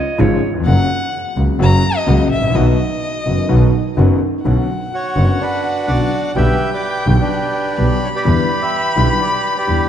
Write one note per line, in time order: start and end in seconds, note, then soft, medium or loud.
0.00 0.22 D#5 medium
0.18 0.38 G#1 medium
0.18 0.38 G#2 medium
0.18 0.38 C#3 medium
0.18 0.38 F3 medium
0.18 0.38 G#3 medium
0.18 0.38 F4 medium
0.18 0.55 C#5 medium
0.49 0.54 D#2 soft
0.54 0.60 E2 medium
0.60 0.66 F2 medium
0.65 0.86 F#1 medium
0.65 0.86 F#2 medium
0.65 0.86 C#3 medium
0.65 0.86 F#3 medium
0.65 0.86 A#3 medium
0.65 0.86 F#4 medium
0.65 1.32 F#5 loud
1.36 1.56 C#2 medium
1.36 1.56 C#3 medium
1.36 1.56 F#3 soft
1.36 1.56 A#3 soft
1.36 1.56 F#4 soft
1.59 1.80 F#1 loud
1.59 1.80 F#2 medium
1.59 1.79 C#3 medium
1.59 1.80 F#3 medium
1.59 1.79 A#3 medium
1.59 1.80 F#4 medium
1.59 1.98 A#5 loud
1.97 2.31 D#5 medium
2.07 2.27 C#2 medium
2.07 2.27 C#3 medium
2.07 2.27 F#3 medium
2.07 2.27 A#3 medium
2.07 2.27 F#4 medium
2.30 2.54 A1 medium
2.30 2.56 E5 medium
2.38 2.43 G#1 soft
2.44 2.49 A1 medium
2.50 2.55 A#1 medium
2.55 2.75 B1 medium
2.55 2.75 B2 medium
2.55 2.75 D#3 medium
2.55 2.75 F#3 medium
2.55 2.75 B3 medium
2.55 2.75 F#4 medium
2.55 3.97 D#5 medium
3.26 3.46 F#1 medium
3.26 3.46 F#2 soft
3.26 3.46 D#3 soft
3.26 3.46 F#3 soft
3.26 3.46 B3 soft
3.26 3.46 F#4 soft
3.49 3.69 B1 medium
3.49 3.70 B1 loud
3.49 3.69 B2 medium
3.49 3.69 D#3 medium
3.49 3.69 F#3 medium
3.49 3.69 B3 medium
3.49 3.70 F#4 medium
3.97 4.17 F#1 medium
3.97 4.17 F#2 medium
3.97 4.17 D#3 medium
3.97 4.17 F#3 medium
3.97 4.18 B3 medium
3.97 4.18 F#4 medium
4.44 4.65 B1 medium
4.44 4.65 B2 medium
4.44 4.65 D3 medium
4.44 4.65 B3 medium
4.44 4.65 C#4 medium
4.44 4.65 F#4 medium
4.44 6.38 F#5 medium
4.93 5.39 F#4 medium
4.93 5.43 C#5 medium
5.16 5.36 F#1 medium
5.16 5.36 F#2 medium
5.16 5.36 D3 medium
5.16 5.36 B3 medium
5.16 5.37 C#4 medium
5.16 5.36 F#4 medium
5.41 6.32 D4 medium
5.41 5.86 F#4 medium
5.41 5.91 B4 medium
5.87 6.08 B1 soft
5.87 6.08 B1 medium
5.87 6.08 B2 soft
5.87 6.08 D3 soft
5.87 6.08 B3 soft
5.87 6.08 C#4 soft
5.87 6.32 F#4 medium
5.87 6.08 F#4 soft
5.87 6.33 D5 loud
6.36 6.56 B1 medium
6.36 6.56 B2 medium
6.36 6.56 D3 medium
6.36 6.56 G3 medium
6.36 6.56 B3 medium
6.36 6.72 G4 medium
6.36 6.56 G4 medium
6.36 6.72 B4 medium
6.36 6.70 E5 medium
6.36 7.78 G5 medium
6.73 7.20 G4 medium
6.73 7.07 B4 medium
6.73 7.06 D5 medium
7.06 7.27 B1 medium
7.06 7.27 B2 medium
7.06 7.27 D3 medium
7.06 7.27 G3 medium
7.06 7.27 B3 soft
7.06 7.27 G4 medium
7.06 7.14 B4 medium
7.21 8.11 D4 medium
7.21 8.11 G4 medium
7.21 7.87 B4 medium
7.77 7.98 B1 medium
7.77 7.98 B2 medium
7.77 7.98 D3 soft
7.77 7.98 G3 soft
7.77 7.98 B3 soft
7.77 7.98 G4 medium
7.77 8.25 B5 medium
8.04 8.09 C#5 medium
8.15 8.62 G4 medium
8.15 8.61 B4 medium
8.15 8.64 D5 medium
8.25 8.45 E2 medium
8.25 8.46 E2 medium
8.25 8.45 D3 medium
8.25 8.45 E3 medium
8.25 8.45 G3 medium
8.25 8.45 B3 medium
8.25 8.45 E4 medium
8.25 9.89 B5 loud
8.62 9.21 G4 medium
8.62 9.20 B4 medium
8.62 8.95 E5 medium
8.96 9.16 B1 medium
8.96 9.16 B2 medium
8.96 9.17 D3 medium
8.96 9.16 G3 medium
8.96 9.16 B3 medium
8.96 9.16 E4 medium
8.96 9.07 E5 medium
9.21 9.57 G4 medium
9.21 9.56 B4 medium
9.21 9.53 D5 medium
9.57 9.89 G4 medium
9.57 9.89 B4 medium
9.57 9.89 D5 medium
9.67 9.88 E2 medium
9.67 9.88 E2 soft
9.67 9.87 D3 soft
9.67 9.87 E3 soft
9.67 9.88 G3 soft
9.67 9.88 B3 soft
9.67 9.88 E4 medium